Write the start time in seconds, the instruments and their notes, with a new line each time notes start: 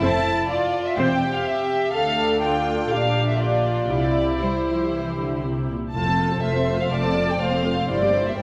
Already playing: violin section E4
0.01 double bass section F1, cello section F2, viola section C4 A4, violin section A5
0.49 violin section F4 D5
0.85 violin section E5
0.97 double bass section E1, cello section E2, viola section C4 C5, violin section G4 G5
1.35 violin section F5
1.45 violin section E5
1.93 double bass section D2, cello section D2, viola section D4 A4, violin section A4 F5
2.41 violin section F4 G5
2.90 double bass section A#1, cello section A#2, viola section D4 G4, violin section D4 F5
3.28 violin section E5
3.39 viola section D4 G4, violin section F4 D5
3.90 double bass section C2, cello section C3, viola section E4 G4, violin section E4 D5
4.42 cello section G3, viola section E4 G4, violin section C5
4.67 cello section F3
4.93 cello section E3
5.20 cello section D3
5.44 cello section C3
5.70 cello section A#2
5.94 double bass section F1, cello section F2, viola section A3 F4, violin section A4 A5
6.07 viola section C4 A4
6.19 viola section A3 F4
6.31 viola section C4 A4
6.43 double bass section F1, cello section F2, viola section A3 F4, violin section C5 E5
6.55 viola section C4 A4
6.68 viola section A3 F4
6.80 viola section C4 A4, violin section F5
6.92 double bass section F1, cello section F2, viola section A3 F4, violin section D5 A5
7.04 viola section C4 A4
7.16 viola section A3 F4
7.29 viola section C4 A4, violin section G5
7.41 double bass section F1, cello section F2, viola section A3 F4, violin section C5 F5
7.52 viola section C4 A4
7.65 viola section A3 F4
7.77 viola section C4 A4
7.89 double bass section G1, cello section G2, viola section G3 E4, violin section D5
8.01 viola section A#3 G4
8.13 viola section G3 E4
8.25 viola section A#3 G4, violin section E5
8.38 double bass section G1, cello section G2, viola section G3 E4, violin section A#4 G5